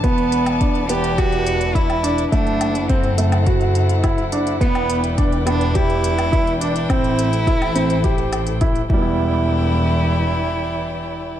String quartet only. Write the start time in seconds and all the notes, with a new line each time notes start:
Already playing: A5
0.04 E4 B4 D5
2.33 A4 C5 F#5
4.61 B4 D5 G5
6.90 A4 C5
8.89 E3 E4 D5 G5